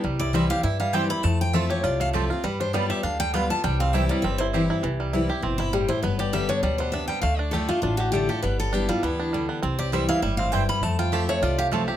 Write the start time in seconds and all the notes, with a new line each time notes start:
0.04 C2 C3 G3
0.19 E4 D5
0.33 E3 G3 C4 E4 C5 E5 G5
0.49 C4 E4 G4 F5
0.63 G2 E4 E5
0.80 G3 F5
0.93 E3 G3 C4 E4 G4 C5 G5
1.10 C4 E4 B5
1.23 F2 A3 A5
1.41 G5
1.53 F3 A3 C4 F4 C5 E5 A5
1.70 C4 F4 G4 C#5
1.84 C2 C3 F4 D5
2.00 A3 F5
2.13 F3 A3 C4 F4 G4 C5 A5
2.30 C4 F4
2.43 G2 G3 B4
2.60 D4 C5
2.73 G3 B3 F4 B4 D5 G5
2.90 G4 E5
3.03 D2 D3 D4 F5
3.20 G3 G5
3.33 G3 B3 F4 B4 F5 G5
3.50 G3 B3 F4 A5
3.64 C2 C3 G3 G5
3.80 C4 F5
3.93 E3 G3 C4 E4 C5 E5 G5
4.09 G3 D5
4.22 G1 G2 C4 E5
4.38 E4 C5
4.53 E3 G3 C4 E4 G4 C5 G5
4.70 E4
4.83 C2 C3 E3
5.00 G3
5.13 E3 G3 C4 E4
5.29 C4 E4 G4
5.42 G1 B2 C4
5.58 E4
5.73 A2 G3 G4
5.88 E4 C5
6.02 G1 G2 B3 B4
6.19 G4 D5
6.33 D3 G3 B3 G4 E5
6.49 D4 C#5
6.62 D2 B2 G3 D5
6.78 B3 C5
6.92 C3 D4 E5
7.08 G3 G5
7.22 D2 D3 A3 F5
7.38 D4 D5
7.51 D3 A3 D4 F4 G4 A4
7.69 A3 D4 F4
7.82 A1 A2 D4 F4
7.97 F#4 G4
8.12 D3 A3 D4 F4 G4
8.29 D4 F4 G4 A4
8.42 G1 G3 B3 B4
8.60 A4
8.73 G3 B3 D4 E4 G4
8.89 G3 B3 E4 F4
9.03 D2 E3 B3 E4
9.20 D4
9.33 D3 G3
9.49 B3
9.62 C2 C3 C4
9.79 G4 D5
9.92 E3 G3 C4 E4 C5 E5 G5
10.09 E4 F5
10.22 G1 A2 G3 E5
10.37 C4 F5
10.52 G2 C4 E4 C5 G5
10.69 G3 B5
10.81 F2 A3 A5
10.99 F4 G5
11.12 F3 A3 C4 F4 G4 C5 E5 A5
11.29 A3 C4 F4 C#5
11.42 C2 C3 F4 D5
11.58 G4 F5
11.71 F3 A3 C4 F4 C5 A5
11.88 C4 F4 G4